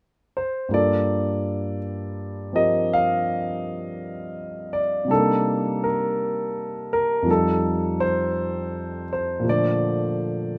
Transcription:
grand piano
0.37 C5
0.69 G2 G3 A#3
0.73 F4 A4 D5
2.53 F3 C4 G4 A#4 D#5
2.93 F5
4.73 D5
5.05 C3 G3
5.10 D4 D#4 A4
5.16 A#3
5.84 A#4
6.93 A#4
7.22 F2 F3
7.27 G3 D#4 A4
8.00 C5
9.13 C5
9.40 A#2 F3
9.45 D3 A3
9.49 C5 D5

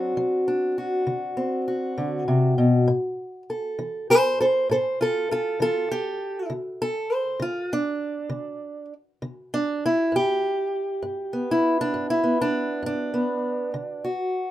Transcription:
steel-string acoustic guitar
Already playing: F#3 C4 D4 F#4
0.17 F#3
0.48 D4
0.78 F#4
1.07 D3
1.37 C4
1.68 F#4
1.98 D3
2.28 C3
2.58 B2
2.88 A2
3.50 A4
3.79 E3
4.10 A4 C5
4.40 A4 C5
4.69 A2 A4 C5
5.01 F4 A4
5.31 F4 A4
5.60 E3 F4 A4
5.91 G4
6.50 D3
6.82 A4
7.13 C5
7.40 D3 F4
7.73 D4
8.29 D3
9.22 D3
9.54 D4
9.86 E4
10.12 G2 G4
11.02 G2
11.33 B3
11.51 E4
11.81 D4
11.94 G2
12.10 E4
12.24 B3
12.41 D4
12.83 G2 D4
13.14 B3
13.74 D3
14.04 F#4

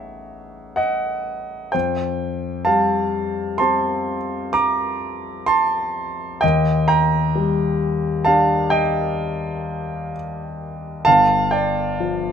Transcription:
grand piano
Already playing: A1 D#4 G#4 C#5 E5
0.76 D#5 F#5
1.72 F2 C5 G5
2.65 G3 F5 A5
3.58 C4 G4 A5 C6
4.53 A#5 D6
5.46 A5 C6
6.41 D#2 D#5 G5
6.88 G5 A#5
7.35 G3
8.25 D4 G4 F5 A5
8.70 D#5 G5
11.05 G1 F5 A5
11.51 D5 G5
12.00 F3

